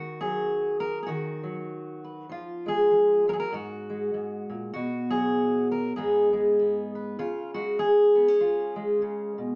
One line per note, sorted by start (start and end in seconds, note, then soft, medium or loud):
0.00 1.05 D#3 medium
0.00 0.84 F#4 medium
0.21 1.42 F#3 medium
0.21 0.80 G#4 medium
0.80 1.01 A#4 loud
1.03 2.29 F#4 medium
1.03 1.08 G#4 medium
1.08 2.27 D#3 medium
1.44 2.30 F#3 medium
2.04 2.27 B4 soft
2.29 2.90 F3 medium
2.29 3.28 F4 medium
2.66 3.27 G#3 medium
2.66 3.28 G#4 loud
2.91 3.27 F3 medium
3.28 3.53 F#3 medium
3.28 3.33 A#4 loud
3.33 3.39 G#4 medium
3.40 3.53 A#4 loud
3.53 4.13 G#2 medium
3.53 4.72 F#4 medium
3.90 4.72 G#3 medium
4.14 4.49 G#2 medium
4.50 4.74 A#2 medium
4.74 5.94 B2 medium
4.74 5.71 F#4 loud
5.10 5.97 F#3 medium
5.10 5.71 G#4 medium
5.71 5.96 A#4 loud
5.96 7.19 G#2 medium
5.96 6.32 G#3 medium
5.96 6.58 B3 medium
5.96 7.19 D#4 medium
5.96 6.93 G#4 medium
6.33 7.16 G#3 medium
6.59 7.19 B3 soft
6.95 7.16 B4 soft
7.19 9.01 C#3 medium
7.19 7.54 F4 loud
7.54 8.75 G#3 medium
7.54 7.79 F#4 medium
7.79 9.01 G#4 loud
8.15 8.28 B3 medium
8.28 9.55 C#4 soft
8.40 9.55 F4 medium
8.76 9.55 G#3 medium
9.02 9.38 C#3 medium
9.38 9.55 B2 medium